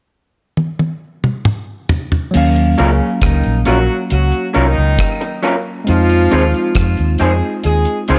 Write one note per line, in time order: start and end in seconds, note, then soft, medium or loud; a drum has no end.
0.57 high tom medium
0.79 high tom medium
1.24 mid tom medium
1.45 mid tom medium
1.89 floor tom medium
2.12 floor tom medium
2.31 5.82 F#3 medium
2.31 5.83 A#3 medium
2.31 crash medium
2.35 2.74 D#2 medium
2.35 5.84 C#4 medium
2.35 5.85 F5 medium
2.56 closed hi-hat soft
2.77 2.99 C#2 medium
2.77 3.13 C#3 medium
2.77 2.88 F#3 medium
2.77 3.13 C#4 medium
2.77 2.89 C#4 medium
2.77 2.89 F4 medium
2.77 2.89 A#4 medium
2.77 closed hi-hat medium
3.22 3.42 C#2 medium
3.22 3.58 D#3 medium
3.22 3.58 D#4 medium
3.22 kick loud
3.22 cross-stick loud
3.22 closed hi-hat loud
3.44 3.65 A#1 medium
3.44 closed hi-hat soft
3.65 3.87 A#1 medium
3.65 3.76 F#3 medium
3.65 4.02 F#3 medium
3.65 3.77 C#4 medium
3.65 3.77 F4 medium
3.65 4.02 F#4 medium
3.65 3.77 A#4 medium
3.65 closed hi-hat medium
4.10 4.31 C#2 loud
4.10 4.46 F#3 medium
4.10 4.46 F#4 medium
4.10 closed hi-hat medium
4.32 closed hi-hat soft
4.54 4.75 C2 medium
4.54 5.39 D#3 medium
4.54 4.65 F#3 medium
4.54 4.65 C#4 medium
4.54 5.39 D#4 loud
4.54 4.65 F4 medium
4.54 4.65 A#4 loud
4.54 closed hi-hat medium
4.78 4.97 C#2 medium
4.99 kick loud
4.99 cross-stick medium
4.99 closed hi-hat medium
5.21 muted clean electric guitar stroke soft
5.21 closed hi-hat medium
5.43 5.53 F#3 medium
5.43 5.53 C#4 medium
5.43 5.54 F4 medium
5.43 5.54 A#4 medium
5.43 closed hi-hat medium
5.84 6.72 F3 medium
5.84 8.19 G#3 medium
5.84 8.19 C4 medium
5.84 6.72 F4 loud
5.84 closed hi-hat medium
5.89 6.27 F2 loud
5.89 8.19 D#4 medium
5.89 8.19 F4 medium
6.09 closed hi-hat soft
6.31 6.52 D#2 medium
6.31 6.42 C4 medium
6.31 6.42 D#4 medium
6.31 6.42 G#4 medium
6.31 6.43 C5 medium
6.31 closed hi-hat medium
6.54 closed hi-hat soft
6.75 6.96 F2 medium
6.75 7.11 F3 medium
6.75 7.11 F4 medium
6.75 kick medium
6.75 cross-stick loud
6.75 closed hi-hat loud
6.97 7.18 D#2 medium
6.97 closed hi-hat soft
7.18 7.40 F2 medium
7.18 7.56 G#3 medium
7.18 7.30 C4 medium
7.18 7.30 D#4 medium
7.18 7.56 G#4 medium
7.18 7.31 G#4 medium
7.18 7.31 C5 medium
7.18 closed hi-hat medium
7.64 7.85 D#2 medium
7.64 8.00 G#3 medium
7.64 8.00 G#4 medium
7.64 closed hi-hat medium
7.85 closed hi-hat medium
8.08 8.19 C#2 medium
8.08 8.19 F3 medium
8.08 8.19 C4 medium
8.08 8.19 D#4 medium
8.08 8.19 F4 loud
8.08 8.19 G#4 medium
8.08 8.19 C5 medium
8.08 closed hi-hat medium